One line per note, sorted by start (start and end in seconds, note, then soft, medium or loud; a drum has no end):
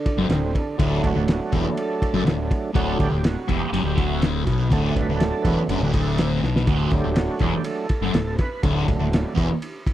0.00 0.76 D3 medium
0.00 0.21 D4 medium
0.06 kick medium
0.06 ride medium
0.17 0.28 F#1 medium
0.17 0.29 F#2 medium
0.17 0.57 C4 loud
0.29 0.53 D1 medium
0.29 0.50 D2 medium
0.29 snare loud
0.29 ride medium
0.55 0.78 D4 medium
0.55 kick medium
0.55 ride medium
0.78 1.02 D1 medium
0.78 1.02 D2 loud
0.78 2.71 F#3 soft
0.78 2.71 A3 soft
0.78 2.72 D4 medium
0.78 1.03 E4 medium
0.78 kick loud
0.78 ride medium
1.03 1.15 D1 medium
1.03 1.14 D2 medium
1.03 kick medium
1.03 ride medium
1.07 1.56 F#4 medium
1.15 1.39 D1 medium
1.15 1.36 D2 medium
1.28 snare loud
1.28 ride medium
1.52 1.64 E1 medium
1.52 1.64 E2 medium
1.52 1.65 G4 medium
1.52 kick medium
1.52 ride medium
1.77 2.25 A4 medium
1.77 ride medium
2.02 kick medium
2.02 ride medium
2.13 2.25 F#1 medium
2.13 2.25 F#2 loud
2.25 2.49 D1 medium
2.25 2.46 D2 medium
2.25 snare loud
2.25 ride medium
2.51 kick medium
2.51 ride medium
2.74 2.98 D1 medium
2.74 2.98 D2 loud
2.74 3.08 F#3 medium
2.74 3.08 A3 soft
2.74 3.09 D4 medium
2.74 3.01 F#4 loud
2.74 kick loud
2.74 ride medium
2.99 3.11 D1 medium
2.99 3.09 D2 medium
2.99 3.26 G4 loud
2.99 kick medium
2.99 ride medium
3.10 3.35 D1 medium
3.10 3.31 D2 medium
3.24 3.51 F#4 medium
3.24 snare loud
3.24 ride medium
3.48 3.61 E1 medium
3.48 3.60 E2 loud
3.48 4.00 G4 loud
3.48 kick medium
3.48 ride medium
3.72 3.83 F#1 medium
3.72 3.84 F#2 loud
3.72 ride medium
3.84 4.42 D1 medium
3.84 4.45 D2 loud
3.98 4.22 F#4 medium
3.98 kick medium
3.98 ride medium
4.22 snare loud
4.22 ride medium
4.45 4.70 B1 medium
4.45 4.70 B2 medium
4.45 kick medium
4.45 snare soft
4.45 ride medium
4.70 4.94 D1 medium
4.70 4.95 D2 medium
4.70 5.67 F#3 soft
4.70 5.68 A3 soft
4.70 5.68 D4 medium
4.70 4.84 A4 loud
4.70 kick loud
4.70 ride medium
4.95 5.06 D1 medium
4.95 5.08 D2 medium
4.95 5.19 B4 loud
4.95 kick medium
4.95 ride medium
5.07 5.30 D1 medium
5.07 5.29 D2 medium
5.20 5.46 A4 medium
5.20 snare loud
5.20 ride medium
5.42 5.56 E1 medium
5.42 5.57 E2 loud
5.42 5.94 B4 loud
5.42 kick medium
5.42 ride medium
5.68 5.79 F#1 medium
5.68 5.82 F#2 loud
5.68 5.91 F#3 soft
5.68 5.92 A3 soft
5.68 5.92 D4 medium
5.68 ride medium
5.80 6.38 D1 medium
5.80 6.43 D2 loud
5.93 6.17 A4 medium
5.93 kick medium
5.93 ride medium
6.18 snare loud
6.18 ride medium
6.42 6.66 B1 medium
6.42 6.67 B2 medium
6.42 snare soft
6.56 snare medium
6.67 6.90 D1 medium
6.67 6.92 D2 loud
6.67 6.91 F#4 medium
6.67 kick medium
6.67 ride medium
6.91 7.03 D1 medium
6.91 7.03 D2 medium
6.91 7.62 F#3 medium
6.91 7.63 A3 medium
6.91 7.63 D4 medium
6.91 7.18 G4 medium
6.91 kick medium
6.91 ride medium
7.04 7.27 D1 medium
7.04 7.24 D2 medium
7.16 7.40 F#4 medium
7.16 snare loud
7.16 ride medium
7.39 7.52 E1 medium
7.39 7.53 E2 medium
7.39 7.64 G4 medium
7.39 kick medium
7.39 ride medium
7.63 7.87 F#3 soft
7.63 7.87 A3 soft
7.63 7.87 D4 soft
7.63 8.36 A4 medium
7.63 ride loud
7.89 kick medium
7.89 ride medium
8.01 8.14 F#1 medium
8.01 8.14 F#2 medium
8.01 snare soft
8.14 8.37 D1 medium
8.14 8.35 D2 medium
8.14 snare loud
8.14 ride medium
8.38 8.62 B4 medium
8.38 kick medium
8.38 snare soft
8.38 ride medium
8.63 8.86 D1 medium
8.63 8.87 D2 loud
8.63 9.33 F#3 medium
8.63 9.33 A3 soft
8.63 9.34 D4 medium
8.63 kick loud
8.63 ride medium
8.88 8.99 D1 medium
8.88 8.99 D2 medium
8.88 kick medium
8.88 ride medium
8.99 9.23 D1 medium
8.99 9.20 D2 medium
9.13 snare loud
9.13 ride medium
9.36 9.49 E1 medium
9.36 9.48 E2 medium
9.36 kick medium
9.36 ride medium
9.62 ride medium
9.87 kick medium
9.87 ride medium